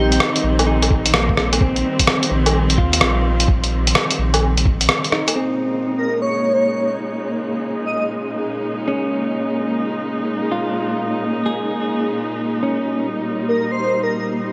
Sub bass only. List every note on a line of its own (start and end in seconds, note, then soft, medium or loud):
0.00 0.19 A#1 loud
0.44 0.90 A#1 loud
0.91 1.83 A#1 medium
2.31 2.77 A#1 loud
2.78 3.00 D#2 medium
3.02 3.95 A#1 loud
4.19 4.65 A#1 loud
4.65 4.89 A#1 medium